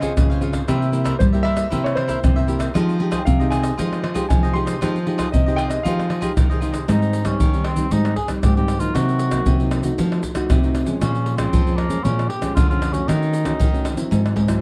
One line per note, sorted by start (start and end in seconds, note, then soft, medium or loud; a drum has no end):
0.00 0.15 C#3 medium
0.00 0.38 C4 medium
0.00 0.12 F4 medium
0.00 0.38 F4 medium
0.00 0.38 G#4 medium
0.00 0.12 C5 medium
0.00 0.12 C#5 medium
0.00 0.38 D#5 medium
0.00 0.12 F5 medium
0.00 pandeiro medium
0.00 shaker medium
0.00 surdo soft
0.17 0.66 G#2 medium
0.17 0.61 C#3 medium
0.17 pandeiro medium
0.17 tamborim medium
0.17 shaker medium
0.17 surdo loud
0.30 0.41 C5 soft
0.30 0.41 C#5 medium
0.30 0.42 F5 medium
0.30 pandeiro soft
0.30 shaker soft
0.41 0.64 C4 medium
0.41 0.54 F4 medium
0.41 0.64 F4 medium
0.41 0.64 G#4 medium
0.41 0.54 C5 soft
0.41 0.53 C#5 soft
0.41 0.51 F5 medium
0.41 pandeiro medium
0.41 shaker medium
0.41 surdo soft
0.53 0.67 C5 soft
0.53 0.67 C#5 soft
0.53 0.66 F5 soft
0.53 pandeiro medium
0.53 tamborim medium
0.53 shaker medium
0.53 surdo soft
0.68 1.18 C3 medium
0.68 0.90 A#3 medium
0.68 0.91 E4 medium
0.68 0.90 E4 soft
0.68 0.91 G4 medium
0.68 0.92 A#4 medium
0.68 0.93 C5 medium
0.68 0.93 E5 medium
0.68 pandeiro medium
0.68 tamborim medium
0.68 shaker medium
0.68 surdo medium
0.82 pandeiro soft
0.82 shaker soft
0.92 1.18 A#3 medium
0.92 1.03 E4 soft
0.92 1.18 E4 medium
0.92 1.18 G4 medium
0.92 1.04 A#4 soft
0.92 1.04 C5 soft
0.92 1.05 E5 medium
0.92 pandeiro medium
0.92 shaker medium
1.04 1.15 E4 medium
1.04 1.15 A#4 medium
1.04 1.16 C5 medium
1.04 1.16 E5 medium
1.04 pandeiro medium
1.04 tamborim medium
1.04 shaker medium
1.04 surdo soft
1.19 1.69 G2 medium
1.19 1.64 G3 medium
1.19 1.25 C5 medium
1.19 pandeiro medium
1.19 shaker medium
1.19 surdo medium
1.33 1.68 A#3 medium
1.33 1.68 E4 medium
1.33 1.68 G4 medium
1.33 1.44 A#4 soft
1.33 1.44 C5 soft
1.33 1.45 E5 soft
1.33 pandeiro soft
1.33 shaker soft
1.33 surdo soft
1.43 1.57 E4 medium
1.43 1.57 A#4 medium
1.43 1.56 C5 medium
1.43 1.85 E5 loud
1.43 1.55 E5 medium
1.43 pandeiro medium
1.43 tamborim medium
1.56 1.70 A#4 soft
1.56 1.70 C5 soft
1.56 1.69 E5 soft
1.56 pandeiro medium
1.56 tamborim medium
1.56 shaker medium
1.70 2.21 C3 soft
1.70 1.96 A#3 medium
1.70 1.94 E4 medium
1.70 1.96 E4 medium
1.70 1.96 G4 medium
1.70 1.95 A#4 medium
1.70 1.96 C5 medium
1.70 1.97 E5 medium
1.70 pandeiro medium
1.70 shaker medium
1.70 surdo medium
1.84 1.96 C#5 medium
1.84 pandeiro soft
1.84 tamborim medium
1.84 shaker soft
1.95 2.06 E4 soft
1.95 2.07 A#4 soft
1.95 2.45 C5 medium
1.95 2.07 C5 soft
1.95 2.08 E5 medium
1.95 pandeiro medium
1.95 tamborim medium
2.08 2.44 A#3 medium
2.08 2.18 E4 medium
2.08 2.44 E4 medium
2.08 2.44 G4 medium
2.08 2.19 A#4 medium
2.08 2.19 C5 medium
2.08 2.19 E5 medium
2.08 pandeiro medium
2.08 shaker medium
2.08 surdo soft
2.23 2.73 G2 medium
2.23 2.68 C3 medium
2.23 pandeiro medium
2.23 tamborim medium
2.23 shaker medium
2.23 surdo loud
2.36 2.47 A#4 soft
2.36 2.48 C5 medium
2.36 2.48 E5 medium
2.36 pandeiro soft
2.36 shaker soft
2.47 2.70 A#3 medium
2.47 2.60 E4 soft
2.47 2.71 E4 medium
2.47 2.71 G4 medium
2.47 2.60 A#4 medium
2.47 2.59 C5 medium
2.47 2.58 E5 medium
2.47 pandeiro medium
2.47 shaker medium
2.59 2.74 A#4 soft
2.59 2.73 C5 soft
2.59 2.73 E5 soft
2.59 pandeiro medium
2.59 tamborim medium
2.59 shaker medium
2.59 surdo soft
2.74 3.24 F3 medium
2.74 2.97 G#3 medium
2.74 2.97 D#4 medium
2.74 2.97 F4 medium
2.74 2.97 G4 medium
2.74 2.98 G#4 medium
2.74 2.99 C5 medium
2.74 3.00 D#5 medium
2.74 pandeiro medium
2.74 tamborim medium
2.74 shaker medium
2.74 surdo medium
2.89 pandeiro soft
2.89 shaker soft
2.99 3.25 G#3 medium
2.99 3.25 D#4 medium
2.99 3.10 F4 soft
2.99 3.26 G4 medium
2.99 3.10 G#4 soft
2.99 3.11 C5 soft
2.99 3.11 D#5 soft
2.99 pandeiro medium
3.11 3.21 F4 medium
3.11 3.22 G#4 medium
3.11 3.22 C5 medium
3.11 3.22 D#5 medium
3.11 pandeiro medium
3.11 tamborim medium
3.11 shaker medium
3.11 surdo soft
3.19 3.26 G5 medium
3.25 3.76 C3 medium
3.25 3.53 F5 medium
3.25 pandeiro medium
3.25 shaker medium
3.25 surdo medium
3.40 3.75 G#3 medium
3.40 3.75 D#4 medium
3.40 3.75 G4 medium
3.40 3.50 G#4 soft
3.40 3.51 C5 soft
3.40 3.52 D#5 soft
3.40 pandeiro soft
3.40 shaker soft
3.40 surdo soft
3.50 3.63 F4 medium
3.50 3.64 G#4 medium
3.50 3.63 C5 medium
3.50 3.61 D#5 medium
3.50 3.76 G#5 medium
3.50 pandeiro medium
3.50 tamborim medium
3.50 shaker medium
3.63 3.77 G#4 soft
3.63 3.77 C5 soft
3.63 3.76 D#5 soft
3.63 pandeiro medium
3.63 tamborim medium
3.63 shaker medium
3.77 4.28 F3 soft
3.77 4.03 G#3 medium
3.77 4.03 D#4 soft
3.77 4.01 F4 medium
3.77 4.03 G4 medium
3.77 4.02 G#4 medium
3.77 4.03 C5 medium
3.77 4.03 D#5 medium
3.77 pandeiro medium
3.77 shaker medium
3.77 surdo medium
3.93 pandeiro soft
3.93 tamborim medium
3.93 shaker soft
4.02 4.13 F4 soft
4.02 4.14 G#4 medium
4.02 4.14 C5 soft
4.02 4.15 D#5 soft
4.02 pandeiro medium
4.02 tamborim medium
4.14 4.51 G#3 medium
4.14 4.51 D#4 medium
4.14 4.25 F4 medium
4.14 4.51 G4 medium
4.14 4.25 G#4 medium
4.14 4.25 C5 medium
4.14 4.26 D#5 medium
4.14 pandeiro medium
4.14 shaker medium
4.14 surdo soft
4.29 4.79 C3 medium
4.29 4.74 F3 medium
4.29 4.53 G#5 medium
4.29 pandeiro medium
4.29 tamborim medium
4.29 shaker medium
4.29 surdo medium
4.43 4.54 G#4 soft
4.43 4.54 C5 medium
4.43 4.55 D#5 medium
4.43 pandeiro soft
4.43 shaker soft
4.53 4.77 G#3 medium
4.53 4.77 D#4 medium
4.53 4.67 F4 soft
4.53 4.78 G4 medium
4.53 4.67 G#4 soft
4.53 4.66 C5 medium
4.53 4.65 D#5 medium
4.53 4.79 C6 medium
4.53 pandeiro medium
4.66 4.80 G#4 soft
4.66 4.80 C5 soft
4.66 4.79 D#5 soft
4.66 pandeiro medium
4.66 tamborim medium
4.66 shaker medium
4.66 surdo soft
4.81 5.31 F3 medium
4.81 4.97 G#3 medium
4.81 4.97 D#4 medium
4.81 5.04 F4 medium
4.81 4.97 G4 medium
4.81 5.05 G#4 medium
4.81 5.06 C5 medium
4.81 5.07 D#5 medium
4.81 pandeiro medium
4.81 tamborim medium
4.81 shaker medium
4.81 surdo medium
4.96 pandeiro soft
4.96 shaker soft
5.06 5.31 G#3 medium
5.06 5.32 D#4 medium
5.06 5.17 F4 soft
5.06 5.32 G4 medium
5.06 5.17 G#4 soft
5.06 5.18 C5 soft
5.06 5.18 D#5 medium
5.06 pandeiro medium
5.18 5.28 F4 medium
5.18 5.28 G#4 medium
5.18 5.29 C5 medium
5.18 5.29 D#5 medium
5.18 pandeiro medium
5.18 tamborim medium
5.18 shaker medium
5.18 surdo soft
5.32 5.82 C3 soft
5.32 5.57 D#5 medium
5.32 pandeiro medium
5.32 shaker medium
5.32 surdo medium
5.46 5.81 G#3 medium
5.46 5.82 D#4 medium
5.46 5.82 G4 medium
5.46 5.57 G#4 soft
5.46 5.57 C5 medium
5.46 5.58 D#5 soft
5.46 pandeiro soft
5.46 shaker soft
5.46 surdo soft
5.56 5.70 F4 medium
5.56 5.70 G#4 medium
5.56 5.70 C5 medium
5.56 5.68 D#5 medium
5.56 5.61 G5 medium
5.56 pandeiro medium
5.56 tamborim medium
5.56 shaker medium
5.68 5.84 G#4 soft
5.68 5.83 C5 soft
5.68 5.84 D#5 medium
5.68 5.83 D#5 soft
5.68 pandeiro medium
5.68 tamborim medium
5.68 shaker medium
5.83 6.34 F3 soft
5.83 6.20 G#3 medium
5.83 6.20 D#4 soft
5.83 6.08 F4 medium
5.83 6.20 G4 medium
5.83 6.09 G#4 medium
5.83 6.10 C5 medium
5.83 6.10 D#5 medium
5.83 6.58 F5 medium
5.83 pandeiro medium
5.83 shaker medium
5.83 surdo medium
5.99 pandeiro soft
5.99 tamborim medium
5.99 shaker soft
6.09 6.19 F4 medium
6.09 6.20 G#4 medium
6.09 6.21 C5 medium
6.09 6.21 D#5 medium
6.09 pandeiro medium
6.09 tamborim medium
6.21 6.57 G#3 medium
6.21 6.58 D#4 medium
6.21 6.31 F4 medium
6.21 6.58 G4 medium
6.21 6.32 G#4 medium
6.21 6.32 C5 medium
6.21 6.32 D#5 medium
6.21 pandeiro medium
6.21 shaker medium
6.21 surdo soft
6.36 6.86 C3 medium
6.36 6.81 D#3 medium
6.36 pandeiro medium
6.36 tamborim medium
6.36 shaker medium
6.36 surdo loud
6.50 6.60 G#4 medium
6.50 6.61 C5 medium
6.50 6.62 D#5 medium
6.50 pandeiro soft
6.50 shaker soft
6.61 6.77 G#3 soft
6.61 6.77 D#4 medium
6.61 6.73 F4 medium
6.61 6.78 G4 medium
6.61 6.74 G#4 soft
6.61 6.73 C5 medium
6.61 6.71 D#5 medium
6.61 pandeiro medium
6.61 shaker medium
6.72 6.87 G#4 soft
6.72 6.87 C5 soft
6.72 6.86 D#5 soft
6.72 pandeiro medium
6.72 tamborim medium
6.72 shaker medium
6.72 surdo soft
6.88 7.37 G#2 medium
6.88 7.23 G3 medium
6.88 7.23 C4 medium
6.88 7.27 D#4 medium
6.88 7.24 D#4 medium
6.88 pandeiro medium
6.88 tamborim medium
6.88 shaker medium
6.88 surdo medium
7.02 pandeiro soft
7.02 shaker soft
7.13 pandeiro medium
7.13 shaker medium
7.25 7.48 G3 medium
7.25 7.48 C4 medium
7.25 7.65 C#4 medium
7.25 7.48 D#4 medium
7.25 pandeiro medium
7.25 tamborim medium
7.25 shaker medium
7.25 surdo soft
7.40 7.89 D#3 medium
7.40 pandeiro medium
7.40 shaker medium
7.40 surdo medium
7.54 7.75 G3 medium
7.54 7.75 C4 medium
7.54 7.76 D#4 medium
7.54 pandeiro soft
7.54 shaker soft
7.64 7.93 C4 medium
7.64 pandeiro medium
7.64 tamborim medium
7.76 7.87 G3 medium
7.76 7.87 C4 medium
7.76 7.87 D#4 medium
7.76 pandeiro medium
7.76 shaker medium
7.76 surdo soft
7.91 8.41 G#2 medium
7.91 8.16 G3 medium
7.91 8.17 C4 medium
7.91 8.16 D#4 medium
7.91 8.17 D#4 medium
7.91 pandeiro medium
7.91 shaker medium
7.91 surdo medium
8.05 pandeiro soft
8.05 tamborim medium
8.05 shaker soft
8.16 8.28 G#4 medium
8.16 pandeiro medium
8.16 surdo soft
8.28 8.51 G3 medium
8.28 8.51 C4 medium
8.28 8.52 D#4 medium
8.28 pandeiro medium
8.28 tamborim medium
8.28 shaker medium
8.28 surdo soft
8.43 8.87 G#2 medium
8.43 8.93 D#3 medium
8.43 8.55 G4 medium
8.43 pandeiro medium
8.43 tamborim medium
8.43 shaker medium
8.43 surdo loud
8.56 8.78 G3 medium
8.56 8.79 C4 medium
8.56 8.79 D#4 medium
8.56 8.81 G4 medium
8.56 pandeiro soft
8.56 shaker soft
8.68 pandeiro medium
8.68 tamborim medium
8.68 shaker medium
8.79 9.28 F#3 medium
8.79 9.29 A#3 medium
8.79 9.29 D#4 medium
8.79 8.96 F4 medium
8.79 pandeiro medium
8.79 shaker medium
8.79 surdo soft
8.94 9.44 C3 medium
8.94 9.72 F#4 medium
8.94 pandeiro medium
8.94 tamborim medium
8.94 shaker medium
8.94 surdo medium
9.09 pandeiro soft
9.09 shaker soft
9.19 pandeiro medium
9.19 shaker medium
9.31 9.54 F#3 medium
9.31 9.55 A#3 medium
9.31 9.55 D#4 medium
9.31 pandeiro medium
9.31 tamborim medium
9.31 shaker medium
9.31 surdo soft
9.46 9.96 C3 medium
9.46 pandeiro medium
9.46 shaker medium
9.46 surdo medium
9.60 9.81 F#3 medium
9.60 9.82 A#3 medium
9.60 9.82 D#4 medium
9.60 pandeiro soft
9.60 shaker soft
9.71 pandeiro medium
9.71 tamborim medium
9.71 shaker medium
9.83 10.32 A3 medium
9.83 10.32 D#4 medium
9.83 10.32 F#4 medium
9.83 pandeiro medium
9.83 shaker medium
9.83 surdo soft
9.98 10.47 F3 medium
9.98 pandeiro medium
9.98 shaker medium
9.98 surdo medium
10.12 pandeiro soft
10.12 tamborim medium
10.12 shaker soft
10.23 pandeiro medium
10.23 shaker medium
10.23 surdo soft
10.35 10.58 A3 medium
10.35 10.58 D#4 medium
10.35 10.58 F#4 medium
10.35 pandeiro medium
10.35 tamborim medium
10.35 shaker medium
10.35 surdo soft
10.50 10.99 C3 medium
10.50 pandeiro medium
10.50 tamborim medium
10.50 shaker medium
10.50 surdo loud
10.63 10.85 A3 medium
10.63 10.85 D#4 medium
10.63 10.85 F#4 medium
10.63 pandeiro soft
10.63 shaker soft
10.75 pandeiro medium
10.75 tamborim medium
10.75 shaker medium
10.86 11.35 F3 medium
10.86 11.35 G#3 medium
10.86 11.35 C#4 medium
10.86 pandeiro medium
10.86 shaker medium
10.86 surdo soft
11.01 11.50 A#2 medium
11.01 11.36 C#4 medium
11.01 pandeiro medium
11.01 tamborim medium
11.01 shaker medium
11.01 surdo medium
11.15 pandeiro soft
11.15 shaker soft
11.26 pandeiro medium
11.37 11.61 F3 medium
11.37 11.61 G#3 medium
11.37 11.78 C4 medium
11.37 11.61 C#4 medium
11.37 pandeiro medium
11.37 tamborim medium
11.37 shaker medium
11.37 surdo soft
11.53 12.02 F2 medium
11.53 11.97 F3 medium
11.53 pandeiro medium
11.53 shaker medium
11.53 surdo medium
11.67 11.88 F3 medium
11.67 11.88 G#3 medium
11.67 11.89 C#4 medium
11.67 pandeiro soft
11.67 shaker soft
11.76 12.05 A#3 medium
11.76 pandeiro medium
11.76 tamborim medium
11.89 11.99 F3 medium
11.89 11.99 G#3 medium
11.89 12.00 C#4 medium
11.89 pandeiro medium
11.89 shaker medium
11.89 surdo soft
12.04 12.54 A#2 medium
12.04 12.29 F3 medium
12.04 12.29 G#3 medium
12.04 12.30 C#4 medium
12.04 12.29 C#4 medium
12.04 pandeiro medium
12.04 shaker medium
12.04 surdo medium
12.19 pandeiro soft
12.19 tamborim medium
12.19 shaker soft
12.28 12.54 G4 medium
12.28 pandeiro medium
12.41 12.64 F3 medium
12.41 12.64 G#3 medium
12.41 12.64 C#4 medium
12.41 pandeiro medium
12.41 tamborim medium
12.41 shaker medium
12.41 surdo soft
12.55 13.05 F2 medium
12.55 13.01 D3 medium
12.55 12.68 F4 medium
12.55 pandeiro medium
12.55 tamborim medium
12.55 shaker medium
12.55 surdo loud
12.69 12.91 F3 medium
12.69 12.91 G#3 medium
12.69 12.92 C#4 medium
12.69 12.94 F4 medium
12.69 pandeiro soft
12.69 shaker soft
12.82 pandeiro medium
12.82 tamborim medium
12.82 shaker medium
12.92 13.42 A3 medium
12.92 13.09 C#4 medium
12.92 13.42 C#4 medium
12.92 13.42 F#4 medium
12.92 pandeiro medium
12.92 shaker medium
12.92 surdo soft
13.08 13.57 D#3 medium
13.08 13.85 D#4 medium
13.08 pandeiro medium
13.08 tamborim medium
13.08 shaker medium
13.08 surdo medium
13.22 pandeiro soft
13.22 shaker soft
13.33 pandeiro medium
13.33 shaker medium
13.44 13.67 A3 medium
13.44 13.67 C#4 medium
13.44 13.68 F#4 medium
13.44 pandeiro medium
13.44 tamborim medium
13.44 shaker medium
13.44 surdo soft
13.60 13.96 D#3 medium
13.60 pandeiro medium
13.60 shaker medium
13.60 surdo medium
13.73 13.95 A3 medium
13.73 13.95 C#4 medium
13.73 13.95 F#4 medium
13.73 pandeiro soft
13.73 shaker soft
13.85 pandeiro medium
13.85 tamborim medium
13.85 shaker medium
13.96 14.45 F#3 medium
13.96 14.45 C4 medium
13.96 14.45 E4 medium
13.96 pandeiro medium
13.96 shaker medium
13.96 surdo soft
14.11 14.60 G#2 medium
14.11 pandeiro medium
14.11 shaker medium
14.11 surdo medium
14.26 pandeiro soft
14.26 tamborim medium
14.26 shaker soft
14.36 14.60 G#2 medium
14.36 pandeiro medium
14.36 surdo soft
14.48 14.61 F#3 medium
14.48 14.61 C4 medium
14.48 14.61 E4 medium
14.48 pandeiro medium
14.48 tamborim medium
14.48 shaker medium
14.48 surdo soft